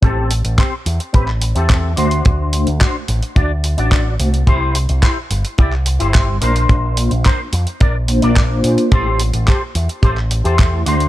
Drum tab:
HH |x-oxx-oxx-oxx-ox|x-oxx-oxx-oxx-ox|x-oxx-oxx-oxx-ox|x-oxx-oxx-oxx-ox|
CP |----x----x--x---|----x-------x---|----x----x--x---|----x-------x---|
BD |o---o---o---o---|o---o---o---o---|o---o---o---o---|o---o---o---o---|

HH |x-oxx-oxx-oxx-ox|
CP |----x----x--x---|
BD |o---o---o---o---|